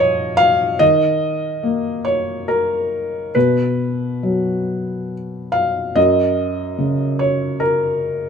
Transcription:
0.00 0.77 A#2 medium
0.00 0.81 F3 medium
0.00 0.39 C#5 loud
0.00 0.79 D#5 loud
0.00 0.37 F5 loud
0.37 0.79 F5 loud
0.79 3.30 D#3 medium
0.79 2.04 D#5 loud
1.63 3.35 A#3 soft
2.05 2.47 C#5 medium
2.48 3.35 A#4 medium
3.35 5.93 B2 medium
3.35 5.11 B4 medium
4.23 5.96 F#3 soft
5.52 5.95 F5 medium
5.96 8.29 F#2 medium
5.96 7.20 D#5 medium
6.78 8.29 C#3 soft
7.19 7.61 C#5 medium
7.60 8.29 A#4 medium

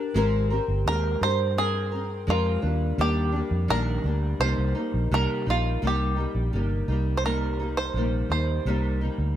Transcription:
0.00 0.15 D4 medium
0.00 0.15 G4 medium
0.00 0.15 A#4 medium
0.14 0.58 G#1 loud
0.14 0.50 G#3 medium
0.14 0.51 C4 loud
0.14 0.51 G4 medium
0.14 0.49 A#4 loud
0.50 0.87 C4 medium
0.50 0.87 G4 medium
0.50 0.86 A#4 medium
0.68 0.83 G1 loud
0.86 1.15 D#2 medium
0.86 1.22 G#3 medium
0.86 1.23 C4 medium
0.86 1.22 G4 medium
0.86 1.20 A#4 loud
0.86 1.20 A#4 medium
1.21 2.24 G2 loud
1.21 1.58 G4 medium
1.21 1.57 A#4 medium
1.21 1.59 C5 loud
1.25 1.56 C4 soft
1.58 1.93 C4 medium
1.58 2.31 G#4 medium
1.58 1.90 A#4 medium
1.92 2.27 C4 soft
1.92 2.27 A#4 soft
2.27 2.56 F2 medium
2.27 2.63 G#3 medium
2.27 2.63 C4 medium
2.27 3.02 F4 medium
2.27 2.63 G4 medium
2.27 2.62 A#4 medium
2.62 2.92 D#2 medium
2.62 2.98 G3 soft
2.62 2.99 A#3 soft
2.62 2.98 D4 medium
2.98 3.41 D#2 loud
2.98 3.34 D#3 medium
2.98 3.34 G3 medium
2.98 3.33 A#3 medium
2.98 3.31 D4 medium
2.98 3.73 G4 medium
3.32 3.69 G3 soft
3.32 3.70 A#3 soft
3.32 3.69 D4 medium
3.51 3.70 F2 loud
3.68 3.97 A#1 medium
3.68 4.04 D#3 medium
3.68 4.05 G3 medium
3.68 4.04 A#3 medium
3.68 4.02 D4 loud
3.68 4.40 A#4 loud
4.04 4.33 D2 medium
4.04 4.41 G3 soft
4.04 4.41 A#3 medium
4.04 4.40 D4 medium
4.40 4.54 C2 loud
4.40 4.76 C3 medium
4.40 4.77 G3 medium
4.40 4.76 A#3 medium
4.40 5.43 C5 loud
4.44 4.74 D#4 medium
4.58 4.72 C2 medium
4.75 5.12 A#3 medium
4.75 5.11 D#4 medium
4.79 5.11 G3 soft
4.94 5.08 A#1 medium
5.11 5.25 C2 medium
5.11 5.47 C3 medium
5.11 5.47 G3 medium
5.11 5.47 A#3 medium
5.11 5.45 D#4 medium
5.11 5.46 A#4 loud
5.46 5.75 A#1 medium
5.46 5.82 A#3 medium
5.46 5.82 D#4 medium
5.46 5.81 F4 medium
5.50 5.81 G3 soft
5.82 6.25 C2 medium
5.82 6.18 C3 medium
5.82 6.18 G3 medium
5.82 6.17 A#3 medium
5.82 6.15 D#4 medium
5.87 6.87 G4 medium
6.16 6.52 G3 soft
6.16 6.53 A#3 soft
6.16 6.52 D#4 soft
6.35 6.49 A#1 medium
6.53 6.81 G1 medium
6.53 6.88 C3 medium
6.53 6.88 G3 medium
6.53 6.89 A#3 medium
6.53 6.87 D#4 medium
6.88 7.91 C2 medium
6.88 7.23 G3 soft
6.88 7.24 A#3 soft
6.88 7.24 D#4 medium
7.17 7.24 C5 medium
7.23 7.59 C3 medium
7.23 7.60 G3 medium
7.23 7.60 A#3 medium
7.23 7.58 D#4 medium
7.23 7.74 A#4 medium
7.59 7.95 G3 soft
7.59 7.96 A#3 soft
7.59 7.95 D#4 medium
7.77 8.30 C5 medium
7.94 8.23 A#1 medium
7.94 8.30 C3 soft
7.94 8.31 G3 medium
7.94 8.31 A#3 medium
7.94 8.29 D#4 medium
8.30 8.58 D#2 medium
8.30 8.66 A#3 soft
8.30 8.65 D#4 soft
8.30 9.36 C5 medium
8.34 8.66 G3 soft
8.65 9.08 C2 loud
8.65 9.01 C3 medium
8.65 9.02 G3 medium
8.65 9.02 A#3 medium
8.65 9.00 D#4 medium
9.01 9.36 G3 soft
9.01 9.36 A#3 medium
9.01 9.36 D#4 soft
9.18 9.33 D2 medium

